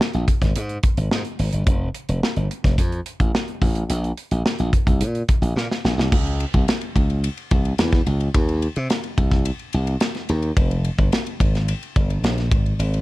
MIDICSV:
0, 0, Header, 1, 3, 480
1, 0, Start_track
1, 0, Tempo, 556070
1, 1442, Time_signature, 4, 2, 24, 8
1, 11234, End_track
2, 0, Start_track
2, 0, Title_t, "Slap bass"
2, 0, Program_c, 0, 36
2, 124, Note_on_c, 0, 34, 84
2, 214, Note_off_c, 0, 34, 0
2, 357, Note_on_c, 0, 32, 91
2, 450, Note_off_c, 0, 32, 0
2, 485, Note_on_c, 0, 44, 103
2, 667, Note_off_c, 0, 44, 0
2, 840, Note_on_c, 0, 32, 93
2, 932, Note_off_c, 0, 32, 0
2, 960, Note_on_c, 0, 44, 110
2, 1052, Note_off_c, 0, 44, 0
2, 1202, Note_on_c, 0, 32, 93
2, 1293, Note_off_c, 0, 32, 0
2, 1324, Note_on_c, 0, 31, 82
2, 1415, Note_off_c, 0, 31, 0
2, 1442, Note_on_c, 0, 29, 113
2, 1626, Note_off_c, 0, 29, 0
2, 1803, Note_on_c, 0, 29, 100
2, 1894, Note_off_c, 0, 29, 0
2, 2041, Note_on_c, 0, 31, 93
2, 2133, Note_off_c, 0, 31, 0
2, 2280, Note_on_c, 0, 29, 95
2, 2373, Note_off_c, 0, 29, 0
2, 2401, Note_on_c, 0, 41, 107
2, 2585, Note_off_c, 0, 41, 0
2, 2763, Note_on_c, 0, 33, 88
2, 2855, Note_off_c, 0, 33, 0
2, 3120, Note_on_c, 0, 33, 93
2, 3305, Note_off_c, 0, 33, 0
2, 3363, Note_on_c, 0, 34, 118
2, 3547, Note_off_c, 0, 34, 0
2, 3723, Note_on_c, 0, 34, 98
2, 3815, Note_off_c, 0, 34, 0
2, 3967, Note_on_c, 0, 34, 92
2, 4058, Note_off_c, 0, 34, 0
2, 4201, Note_on_c, 0, 36, 89
2, 4319, Note_on_c, 0, 46, 104
2, 4332, Note_off_c, 0, 36, 0
2, 4505, Note_off_c, 0, 46, 0
2, 4676, Note_on_c, 0, 34, 87
2, 4771, Note_off_c, 0, 34, 0
2, 4798, Note_on_c, 0, 46, 110
2, 4892, Note_off_c, 0, 46, 0
2, 5045, Note_on_c, 0, 34, 84
2, 5137, Note_off_c, 0, 34, 0
2, 5160, Note_on_c, 0, 36, 85
2, 5253, Note_off_c, 0, 36, 0
2, 5283, Note_on_c, 0, 37, 102
2, 5559, Note_off_c, 0, 37, 0
2, 5646, Note_on_c, 0, 36, 92
2, 5737, Note_off_c, 0, 36, 0
2, 6004, Note_on_c, 0, 37, 99
2, 6279, Note_off_c, 0, 37, 0
2, 6486, Note_on_c, 0, 36, 90
2, 6668, Note_off_c, 0, 36, 0
2, 6723, Note_on_c, 0, 40, 105
2, 6907, Note_off_c, 0, 40, 0
2, 6961, Note_on_c, 0, 37, 90
2, 7146, Note_off_c, 0, 37, 0
2, 7203, Note_on_c, 0, 39, 115
2, 7478, Note_off_c, 0, 39, 0
2, 7567, Note_on_c, 0, 48, 100
2, 7658, Note_off_c, 0, 48, 0
2, 7923, Note_on_c, 0, 36, 88
2, 8199, Note_off_c, 0, 36, 0
2, 8409, Note_on_c, 0, 36, 109
2, 8590, Note_off_c, 0, 36, 0
2, 8886, Note_on_c, 0, 39, 98
2, 9069, Note_off_c, 0, 39, 0
2, 9121, Note_on_c, 0, 29, 107
2, 9397, Note_off_c, 0, 29, 0
2, 9481, Note_on_c, 0, 31, 89
2, 9573, Note_off_c, 0, 31, 0
2, 9840, Note_on_c, 0, 32, 83
2, 10116, Note_off_c, 0, 32, 0
2, 10325, Note_on_c, 0, 31, 102
2, 10507, Note_off_c, 0, 31, 0
2, 10560, Note_on_c, 0, 34, 100
2, 10801, Note_off_c, 0, 34, 0
2, 10801, Note_on_c, 0, 32, 99
2, 10985, Note_off_c, 0, 32, 0
2, 11041, Note_on_c, 0, 32, 101
2, 11234, Note_off_c, 0, 32, 0
2, 11234, End_track
3, 0, Start_track
3, 0, Title_t, "Drums"
3, 8, Note_on_c, 9, 38, 111
3, 94, Note_off_c, 9, 38, 0
3, 117, Note_on_c, 9, 42, 35
3, 203, Note_off_c, 9, 42, 0
3, 240, Note_on_c, 9, 36, 89
3, 243, Note_on_c, 9, 42, 79
3, 326, Note_off_c, 9, 36, 0
3, 329, Note_off_c, 9, 42, 0
3, 360, Note_on_c, 9, 36, 89
3, 365, Note_on_c, 9, 42, 46
3, 369, Note_on_c, 9, 38, 36
3, 446, Note_off_c, 9, 36, 0
3, 451, Note_off_c, 9, 42, 0
3, 455, Note_off_c, 9, 38, 0
3, 480, Note_on_c, 9, 42, 100
3, 566, Note_off_c, 9, 42, 0
3, 599, Note_on_c, 9, 42, 37
3, 685, Note_off_c, 9, 42, 0
3, 716, Note_on_c, 9, 42, 88
3, 721, Note_on_c, 9, 36, 111
3, 803, Note_off_c, 9, 42, 0
3, 807, Note_off_c, 9, 36, 0
3, 840, Note_on_c, 9, 42, 54
3, 927, Note_off_c, 9, 42, 0
3, 962, Note_on_c, 9, 38, 108
3, 1048, Note_off_c, 9, 38, 0
3, 1077, Note_on_c, 9, 42, 35
3, 1163, Note_off_c, 9, 42, 0
3, 1200, Note_on_c, 9, 46, 81
3, 1287, Note_off_c, 9, 46, 0
3, 1317, Note_on_c, 9, 42, 54
3, 1404, Note_off_c, 9, 42, 0
3, 1439, Note_on_c, 9, 42, 99
3, 1440, Note_on_c, 9, 36, 127
3, 1525, Note_off_c, 9, 42, 0
3, 1526, Note_off_c, 9, 36, 0
3, 1679, Note_on_c, 9, 42, 80
3, 1766, Note_off_c, 9, 42, 0
3, 1801, Note_on_c, 9, 42, 59
3, 1888, Note_off_c, 9, 42, 0
3, 1928, Note_on_c, 9, 38, 112
3, 2014, Note_off_c, 9, 38, 0
3, 2040, Note_on_c, 9, 42, 37
3, 2126, Note_off_c, 9, 42, 0
3, 2167, Note_on_c, 9, 42, 78
3, 2254, Note_off_c, 9, 42, 0
3, 2281, Note_on_c, 9, 36, 96
3, 2286, Note_on_c, 9, 42, 46
3, 2290, Note_on_c, 9, 38, 36
3, 2368, Note_off_c, 9, 36, 0
3, 2373, Note_off_c, 9, 42, 0
3, 2376, Note_off_c, 9, 38, 0
3, 2400, Note_on_c, 9, 36, 86
3, 2403, Note_on_c, 9, 42, 104
3, 2487, Note_off_c, 9, 36, 0
3, 2490, Note_off_c, 9, 42, 0
3, 2523, Note_on_c, 9, 42, 36
3, 2610, Note_off_c, 9, 42, 0
3, 2641, Note_on_c, 9, 42, 85
3, 2727, Note_off_c, 9, 42, 0
3, 2762, Note_on_c, 9, 36, 94
3, 2762, Note_on_c, 9, 42, 53
3, 2848, Note_off_c, 9, 36, 0
3, 2848, Note_off_c, 9, 42, 0
3, 2890, Note_on_c, 9, 38, 109
3, 2976, Note_off_c, 9, 38, 0
3, 3003, Note_on_c, 9, 42, 37
3, 3089, Note_off_c, 9, 42, 0
3, 3121, Note_on_c, 9, 36, 97
3, 3123, Note_on_c, 9, 46, 75
3, 3208, Note_off_c, 9, 36, 0
3, 3210, Note_off_c, 9, 46, 0
3, 3240, Note_on_c, 9, 42, 54
3, 3327, Note_off_c, 9, 42, 0
3, 3364, Note_on_c, 9, 42, 98
3, 3450, Note_off_c, 9, 42, 0
3, 3489, Note_on_c, 9, 42, 32
3, 3575, Note_off_c, 9, 42, 0
3, 3604, Note_on_c, 9, 42, 72
3, 3690, Note_off_c, 9, 42, 0
3, 3723, Note_on_c, 9, 42, 58
3, 3809, Note_off_c, 9, 42, 0
3, 3847, Note_on_c, 9, 38, 114
3, 3934, Note_off_c, 9, 38, 0
3, 3958, Note_on_c, 9, 42, 38
3, 4044, Note_off_c, 9, 42, 0
3, 4083, Note_on_c, 9, 36, 94
3, 4087, Note_on_c, 9, 42, 78
3, 4169, Note_off_c, 9, 36, 0
3, 4173, Note_off_c, 9, 42, 0
3, 4202, Note_on_c, 9, 36, 92
3, 4208, Note_on_c, 9, 42, 46
3, 4289, Note_off_c, 9, 36, 0
3, 4295, Note_off_c, 9, 42, 0
3, 4322, Note_on_c, 9, 42, 97
3, 4409, Note_off_c, 9, 42, 0
3, 4445, Note_on_c, 9, 42, 37
3, 4532, Note_off_c, 9, 42, 0
3, 4563, Note_on_c, 9, 42, 82
3, 4565, Note_on_c, 9, 36, 112
3, 4649, Note_off_c, 9, 42, 0
3, 4651, Note_off_c, 9, 36, 0
3, 4687, Note_on_c, 9, 42, 59
3, 4774, Note_off_c, 9, 42, 0
3, 4810, Note_on_c, 9, 38, 62
3, 4897, Note_off_c, 9, 38, 0
3, 4933, Note_on_c, 9, 38, 65
3, 5019, Note_off_c, 9, 38, 0
3, 5051, Note_on_c, 9, 38, 100
3, 5137, Note_off_c, 9, 38, 0
3, 5174, Note_on_c, 9, 38, 88
3, 5261, Note_off_c, 9, 38, 0
3, 5284, Note_on_c, 9, 36, 125
3, 5284, Note_on_c, 9, 49, 101
3, 5370, Note_off_c, 9, 49, 0
3, 5371, Note_off_c, 9, 36, 0
3, 5410, Note_on_c, 9, 51, 40
3, 5496, Note_off_c, 9, 51, 0
3, 5526, Note_on_c, 9, 51, 65
3, 5613, Note_off_c, 9, 51, 0
3, 5643, Note_on_c, 9, 51, 49
3, 5646, Note_on_c, 9, 36, 86
3, 5729, Note_off_c, 9, 51, 0
3, 5732, Note_off_c, 9, 36, 0
3, 5767, Note_on_c, 9, 51, 73
3, 5773, Note_on_c, 9, 38, 122
3, 5854, Note_off_c, 9, 51, 0
3, 5860, Note_off_c, 9, 38, 0
3, 5880, Note_on_c, 9, 51, 50
3, 5967, Note_off_c, 9, 51, 0
3, 6005, Note_on_c, 9, 36, 89
3, 6009, Note_on_c, 9, 51, 64
3, 6091, Note_off_c, 9, 36, 0
3, 6095, Note_off_c, 9, 51, 0
3, 6127, Note_on_c, 9, 51, 38
3, 6213, Note_off_c, 9, 51, 0
3, 6248, Note_on_c, 9, 51, 85
3, 6335, Note_off_c, 9, 51, 0
3, 6366, Note_on_c, 9, 51, 45
3, 6452, Note_off_c, 9, 51, 0
3, 6482, Note_on_c, 9, 51, 69
3, 6486, Note_on_c, 9, 36, 115
3, 6568, Note_off_c, 9, 51, 0
3, 6572, Note_off_c, 9, 36, 0
3, 6605, Note_on_c, 9, 51, 47
3, 6691, Note_off_c, 9, 51, 0
3, 6719, Note_on_c, 9, 51, 81
3, 6725, Note_on_c, 9, 38, 111
3, 6806, Note_off_c, 9, 51, 0
3, 6812, Note_off_c, 9, 38, 0
3, 6842, Note_on_c, 9, 36, 94
3, 6842, Note_on_c, 9, 51, 40
3, 6849, Note_on_c, 9, 38, 38
3, 6928, Note_off_c, 9, 36, 0
3, 6928, Note_off_c, 9, 51, 0
3, 6935, Note_off_c, 9, 38, 0
3, 6962, Note_on_c, 9, 51, 64
3, 7048, Note_off_c, 9, 51, 0
3, 7082, Note_on_c, 9, 51, 45
3, 7168, Note_off_c, 9, 51, 0
3, 7202, Note_on_c, 9, 51, 82
3, 7204, Note_on_c, 9, 36, 120
3, 7289, Note_off_c, 9, 51, 0
3, 7290, Note_off_c, 9, 36, 0
3, 7325, Note_on_c, 9, 51, 45
3, 7412, Note_off_c, 9, 51, 0
3, 7443, Note_on_c, 9, 51, 65
3, 7529, Note_off_c, 9, 51, 0
3, 7561, Note_on_c, 9, 51, 47
3, 7647, Note_off_c, 9, 51, 0
3, 7682, Note_on_c, 9, 51, 74
3, 7687, Note_on_c, 9, 38, 122
3, 7768, Note_off_c, 9, 51, 0
3, 7774, Note_off_c, 9, 38, 0
3, 7799, Note_on_c, 9, 51, 52
3, 7885, Note_off_c, 9, 51, 0
3, 7922, Note_on_c, 9, 36, 96
3, 7924, Note_on_c, 9, 51, 65
3, 8008, Note_off_c, 9, 36, 0
3, 8011, Note_off_c, 9, 51, 0
3, 8041, Note_on_c, 9, 36, 93
3, 8041, Note_on_c, 9, 51, 40
3, 8045, Note_on_c, 9, 38, 38
3, 8127, Note_off_c, 9, 36, 0
3, 8128, Note_off_c, 9, 51, 0
3, 8131, Note_off_c, 9, 38, 0
3, 8161, Note_on_c, 9, 51, 88
3, 8247, Note_off_c, 9, 51, 0
3, 8280, Note_on_c, 9, 51, 41
3, 8367, Note_off_c, 9, 51, 0
3, 8397, Note_on_c, 9, 51, 74
3, 8483, Note_off_c, 9, 51, 0
3, 8520, Note_on_c, 9, 51, 48
3, 8607, Note_off_c, 9, 51, 0
3, 8636, Note_on_c, 9, 51, 80
3, 8642, Note_on_c, 9, 38, 116
3, 8722, Note_off_c, 9, 51, 0
3, 8728, Note_off_c, 9, 38, 0
3, 8758, Note_on_c, 9, 51, 39
3, 8766, Note_on_c, 9, 38, 40
3, 8845, Note_off_c, 9, 51, 0
3, 8852, Note_off_c, 9, 38, 0
3, 8881, Note_on_c, 9, 51, 67
3, 8967, Note_off_c, 9, 51, 0
3, 8998, Note_on_c, 9, 51, 43
3, 9085, Note_off_c, 9, 51, 0
3, 9121, Note_on_c, 9, 36, 127
3, 9123, Note_on_c, 9, 51, 86
3, 9208, Note_off_c, 9, 36, 0
3, 9209, Note_off_c, 9, 51, 0
3, 9246, Note_on_c, 9, 51, 44
3, 9332, Note_off_c, 9, 51, 0
3, 9362, Note_on_c, 9, 51, 70
3, 9448, Note_off_c, 9, 51, 0
3, 9479, Note_on_c, 9, 51, 47
3, 9483, Note_on_c, 9, 36, 85
3, 9566, Note_off_c, 9, 51, 0
3, 9569, Note_off_c, 9, 36, 0
3, 9603, Note_on_c, 9, 51, 75
3, 9609, Note_on_c, 9, 38, 118
3, 9689, Note_off_c, 9, 51, 0
3, 9695, Note_off_c, 9, 38, 0
3, 9724, Note_on_c, 9, 51, 52
3, 9810, Note_off_c, 9, 51, 0
3, 9842, Note_on_c, 9, 36, 96
3, 9847, Note_on_c, 9, 51, 67
3, 9929, Note_off_c, 9, 36, 0
3, 9933, Note_off_c, 9, 51, 0
3, 9970, Note_on_c, 9, 51, 43
3, 9974, Note_on_c, 9, 38, 38
3, 10057, Note_off_c, 9, 51, 0
3, 10060, Note_off_c, 9, 38, 0
3, 10085, Note_on_c, 9, 51, 90
3, 10171, Note_off_c, 9, 51, 0
3, 10208, Note_on_c, 9, 51, 43
3, 10295, Note_off_c, 9, 51, 0
3, 10324, Note_on_c, 9, 36, 120
3, 10324, Note_on_c, 9, 51, 70
3, 10411, Note_off_c, 9, 36, 0
3, 10411, Note_off_c, 9, 51, 0
3, 10447, Note_on_c, 9, 51, 47
3, 10533, Note_off_c, 9, 51, 0
3, 10565, Note_on_c, 9, 51, 80
3, 10571, Note_on_c, 9, 38, 114
3, 10651, Note_off_c, 9, 51, 0
3, 10657, Note_off_c, 9, 38, 0
3, 10686, Note_on_c, 9, 51, 41
3, 10693, Note_on_c, 9, 38, 39
3, 10772, Note_off_c, 9, 51, 0
3, 10779, Note_off_c, 9, 38, 0
3, 10803, Note_on_c, 9, 36, 120
3, 10806, Note_on_c, 9, 51, 66
3, 10889, Note_off_c, 9, 36, 0
3, 10893, Note_off_c, 9, 51, 0
3, 10928, Note_on_c, 9, 51, 42
3, 11015, Note_off_c, 9, 51, 0
3, 11047, Note_on_c, 9, 51, 87
3, 11133, Note_off_c, 9, 51, 0
3, 11167, Note_on_c, 9, 51, 44
3, 11234, Note_off_c, 9, 51, 0
3, 11234, End_track
0, 0, End_of_file